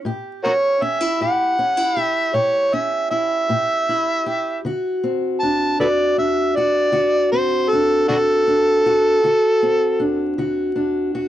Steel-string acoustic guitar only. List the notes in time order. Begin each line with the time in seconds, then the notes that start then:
0.05 A2 G4
0.46 C#4
0.82 C#4
1.01 E4
1.21 A2 G4
1.59 C#4
1.77 E4
1.97 G4
2.34 A2 G4
2.73 C#4
3.11 E4
3.49 A2 G4
3.89 E4
4.26 G4
4.65 D3 F#4
5.04 C4
5.43 D4
5.80 D3 F#4
6.18 D4
6.57 F#4
6.92 D3 F#4
7.32 C4
7.73 D4
8.09 D3 F#4
8.47 D4
8.86 F#4
9.24 D3 F#4
9.63 C4
10.00 D4
10.38 D3 F#4
10.76 D4
11.15 F#4